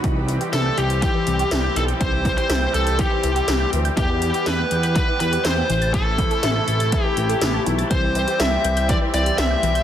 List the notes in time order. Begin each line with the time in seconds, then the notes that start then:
0.04 C2 E3 G3 C4 G4, kick, closed hi-hat
0.16 E3
0.28 E3, closed hi-hat
0.41 G4, closed hi-hat
0.53 C2 A4 E5, snare, closed hi-hat
0.66 G5
0.78 C2 G4 G6, closed hi-hat
0.90 G6, closed hi-hat
1.02 E3 G4, kick, closed hi-hat
1.15 E3
1.27 C2 E3, closed hi-hat
1.39 G4, closed hi-hat
1.51 C2 E5, snare, closed hi-hat
1.64 G5
1.76 B1 E3 A4, closed hi-hat
1.88 G6, closed hi-hat
2.01 C2 E3 C5, kick, closed hi-hat
2.13 E3
2.25 E3, kick, closed hi-hat
2.38 G4 C5, closed hi-hat
2.50 C2 E5, snare, closed hi-hat
2.62 G5
2.74 C2 A4 G6, closed hi-hat
2.87 G6, closed hi-hat
2.99 E3 G4, kick, closed hi-hat
3.11 E3
3.23 C2 E3, closed hi-hat
3.36 G4, closed hi-hat
3.48 C2 E5, snare, closed hi-hat
3.60 G5
3.73 D2 E3, closed hi-hat
3.85 G6, closed hi-hat
3.97 E2 E3 B3 G4, kick, closed hi-hat
4.10 E3
4.22 E3, closed hi-hat
4.34 G4, closed hi-hat
4.46 E2 B4 E5, snare, closed hi-hat
4.59 G5
4.71 E2 G6, closed hi-hat
4.83 G6, closed hi-hat
4.96 E3 B4, kick, closed hi-hat
5.08 E3
5.20 E2 E3 B4, closed hi-hat
5.33 G4, closed hi-hat
5.45 E2 C5 E5, snare, closed hi-hat
5.57 G5
5.69 A1 C3 E3 A3 E4, closed hi-hat
5.82 A6, closed hi-hat
5.94 E3 A4, kick, closed hi-hat
6.06 E3
6.18 E3, kick, closed hi-hat
6.31 A4, closed hi-hat
6.43 A1 E5, snare, closed hi-hat
6.56 A5
6.68 A1 A6, closed hi-hat
6.80 A6, closed hi-hat
6.92 E3, kick, closed hi-hat
7.05 E3 G4
7.17 A1 E3, closed hi-hat
7.29 A4, closed hi-hat
7.41 A1 E5, snare, closed hi-hat
7.54 A5
7.66 B1 E3, closed hi-hat
7.78 A6, closed hi-hat
7.91 C2 E3 G3 C4 G4 C5, kick, closed hi-hat
8.03 E3
8.15 E3, closed hi-hat
8.28 G4, closed hi-hat
8.40 C2 E5, snare, closed hi-hat
8.52 G5
8.64 C2 G6, closed hi-hat
8.77 G6, closed hi-hat
8.89 E3 D5, kick, closed hi-hat
9.02 E3
9.14 C2 E3 D5, closed hi-hat
9.26 G4, closed hi-hat
9.38 C2 E5, snare, closed hi-hat
9.51 G5
9.63 B1 E3, closed hi-hat
9.75 G6, closed hi-hat